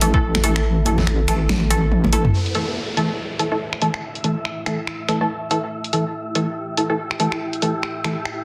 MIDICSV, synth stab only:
0, 0, Header, 1, 2, 480
1, 0, Start_track
1, 0, Tempo, 422535
1, 737, Time_signature, 4, 2, 24, 8
1, 9589, End_track
2, 0, Start_track
2, 0, Title_t, "Synth stab"
2, 0, Program_c, 0, 62
2, 19, Note_on_c, 0, 69, 93
2, 20, Note_on_c, 0, 52, 87
2, 20, Note_on_c, 0, 57, 78
2, 137, Note_off_c, 0, 52, 0
2, 137, Note_off_c, 0, 57, 0
2, 137, Note_off_c, 0, 69, 0
2, 157, Note_on_c, 0, 52, 99
2, 158, Note_on_c, 0, 57, 88
2, 159, Note_on_c, 0, 69, 110
2, 214, Note_off_c, 0, 52, 0
2, 214, Note_off_c, 0, 57, 0
2, 215, Note_off_c, 0, 69, 0
2, 497, Note_on_c, 0, 57, 84
2, 497, Note_on_c, 0, 69, 100
2, 498, Note_on_c, 0, 52, 89
2, 576, Note_off_c, 0, 57, 0
2, 576, Note_off_c, 0, 69, 0
2, 577, Note_off_c, 0, 52, 0
2, 977, Note_on_c, 0, 52, 80
2, 977, Note_on_c, 0, 57, 74
2, 977, Note_on_c, 0, 69, 86
2, 1104, Note_off_c, 0, 52, 0
2, 1104, Note_off_c, 0, 57, 0
2, 1104, Note_off_c, 0, 69, 0
2, 1454, Note_on_c, 0, 69, 87
2, 1455, Note_on_c, 0, 52, 79
2, 1455, Note_on_c, 0, 57, 74
2, 1583, Note_off_c, 0, 52, 0
2, 1583, Note_off_c, 0, 57, 0
2, 1583, Note_off_c, 0, 69, 0
2, 1936, Note_on_c, 0, 57, 78
2, 1936, Note_on_c, 0, 69, 93
2, 1937, Note_on_c, 0, 52, 84
2, 2064, Note_off_c, 0, 52, 0
2, 2064, Note_off_c, 0, 57, 0
2, 2064, Note_off_c, 0, 69, 0
2, 2415, Note_on_c, 0, 57, 79
2, 2416, Note_on_c, 0, 52, 87
2, 2416, Note_on_c, 0, 69, 92
2, 2543, Note_off_c, 0, 57, 0
2, 2543, Note_off_c, 0, 69, 0
2, 2544, Note_off_c, 0, 52, 0
2, 2896, Note_on_c, 0, 57, 70
2, 2897, Note_on_c, 0, 52, 74
2, 2897, Note_on_c, 0, 69, 84
2, 3024, Note_off_c, 0, 52, 0
2, 3024, Note_off_c, 0, 57, 0
2, 3024, Note_off_c, 0, 69, 0
2, 3375, Note_on_c, 0, 57, 67
2, 3375, Note_on_c, 0, 69, 83
2, 3376, Note_on_c, 0, 52, 74
2, 3503, Note_off_c, 0, 57, 0
2, 3503, Note_off_c, 0, 69, 0
2, 3504, Note_off_c, 0, 52, 0
2, 3856, Note_on_c, 0, 52, 78
2, 3856, Note_on_c, 0, 69, 89
2, 3857, Note_on_c, 0, 57, 76
2, 3975, Note_off_c, 0, 52, 0
2, 3975, Note_off_c, 0, 57, 0
2, 3975, Note_off_c, 0, 69, 0
2, 3996, Note_on_c, 0, 57, 87
2, 3996, Note_on_c, 0, 69, 99
2, 3997, Note_on_c, 0, 52, 92
2, 4053, Note_off_c, 0, 57, 0
2, 4053, Note_off_c, 0, 69, 0
2, 4054, Note_off_c, 0, 52, 0
2, 4338, Note_on_c, 0, 57, 79
2, 4338, Note_on_c, 0, 69, 95
2, 4339, Note_on_c, 0, 52, 85
2, 4417, Note_off_c, 0, 52, 0
2, 4417, Note_off_c, 0, 57, 0
2, 4417, Note_off_c, 0, 69, 0
2, 4818, Note_on_c, 0, 52, 74
2, 4819, Note_on_c, 0, 57, 68
2, 4819, Note_on_c, 0, 69, 84
2, 4945, Note_off_c, 0, 52, 0
2, 4945, Note_off_c, 0, 57, 0
2, 4945, Note_off_c, 0, 69, 0
2, 5299, Note_on_c, 0, 52, 75
2, 5299, Note_on_c, 0, 57, 71
2, 5300, Note_on_c, 0, 69, 83
2, 5425, Note_off_c, 0, 52, 0
2, 5425, Note_off_c, 0, 57, 0
2, 5425, Note_off_c, 0, 69, 0
2, 5777, Note_on_c, 0, 69, 89
2, 5778, Note_on_c, 0, 57, 72
2, 5779, Note_on_c, 0, 52, 81
2, 5896, Note_off_c, 0, 57, 0
2, 5896, Note_off_c, 0, 69, 0
2, 5897, Note_off_c, 0, 52, 0
2, 5918, Note_on_c, 0, 52, 92
2, 5919, Note_on_c, 0, 57, 89
2, 5919, Note_on_c, 0, 69, 101
2, 5974, Note_off_c, 0, 52, 0
2, 5975, Note_off_c, 0, 57, 0
2, 5975, Note_off_c, 0, 69, 0
2, 6257, Note_on_c, 0, 52, 84
2, 6257, Note_on_c, 0, 57, 79
2, 6257, Note_on_c, 0, 69, 95
2, 6336, Note_off_c, 0, 52, 0
2, 6336, Note_off_c, 0, 57, 0
2, 6336, Note_off_c, 0, 69, 0
2, 6736, Note_on_c, 0, 57, 67
2, 6736, Note_on_c, 0, 69, 80
2, 6737, Note_on_c, 0, 52, 76
2, 6863, Note_off_c, 0, 69, 0
2, 6864, Note_off_c, 0, 52, 0
2, 6864, Note_off_c, 0, 57, 0
2, 7218, Note_on_c, 0, 52, 77
2, 7218, Note_on_c, 0, 57, 71
2, 7219, Note_on_c, 0, 69, 88
2, 7344, Note_off_c, 0, 57, 0
2, 7345, Note_off_c, 0, 52, 0
2, 7345, Note_off_c, 0, 69, 0
2, 7697, Note_on_c, 0, 57, 76
2, 7697, Note_on_c, 0, 69, 88
2, 7698, Note_on_c, 0, 52, 78
2, 7815, Note_off_c, 0, 69, 0
2, 7816, Note_off_c, 0, 52, 0
2, 7816, Note_off_c, 0, 57, 0
2, 7835, Note_on_c, 0, 52, 95
2, 7835, Note_on_c, 0, 57, 86
2, 7835, Note_on_c, 0, 69, 105
2, 7893, Note_off_c, 0, 52, 0
2, 7893, Note_off_c, 0, 57, 0
2, 7893, Note_off_c, 0, 69, 0
2, 8176, Note_on_c, 0, 52, 87
2, 8176, Note_on_c, 0, 57, 78
2, 8176, Note_on_c, 0, 69, 96
2, 8256, Note_off_c, 0, 52, 0
2, 8256, Note_off_c, 0, 57, 0
2, 8256, Note_off_c, 0, 69, 0
2, 8659, Note_on_c, 0, 52, 75
2, 8659, Note_on_c, 0, 57, 69
2, 8660, Note_on_c, 0, 69, 82
2, 8785, Note_off_c, 0, 52, 0
2, 8785, Note_off_c, 0, 57, 0
2, 8785, Note_off_c, 0, 69, 0
2, 9137, Note_on_c, 0, 52, 76
2, 9137, Note_on_c, 0, 57, 67
2, 9137, Note_on_c, 0, 69, 84
2, 9264, Note_off_c, 0, 52, 0
2, 9264, Note_off_c, 0, 57, 0
2, 9264, Note_off_c, 0, 69, 0
2, 9589, End_track
0, 0, End_of_file